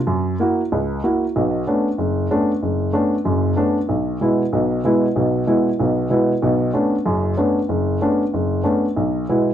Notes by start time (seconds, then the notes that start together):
0.07 F#2
0.40 A#3 E4 F#4
0.72 C#2
1.04 A#3 E4 F#4
1.36 B1 B2
1.67 A3 B3 C#4 D4
1.98 F#1
2.31 A3 B3 C#4 D4
2.63 F#1
2.93 A3 B3 C#4 D4
3.25 F#1 F#2
3.56 A3 B3 C#4 D4
3.89 B1
4.21 B2 G#3 B3 E4
4.52 B1 B2
4.84 B2 G#3 B3 E4
5.16 B1 B2
5.47 B2 G#3 B3 E4
5.79 B1 B2
6.10 B2 G#3 B3 E4
6.42 B1 B2
6.73 A3 B3 C#4 D4
7.06 F#1 F#2
7.37 A3 B3 C#4 D4
7.69 F#1
8.01 A3 B3 C#4 D4
8.34 F#1
8.64 A3 B3 C#4 D4
8.96 B1
9.29 B2 G#3 B3 E4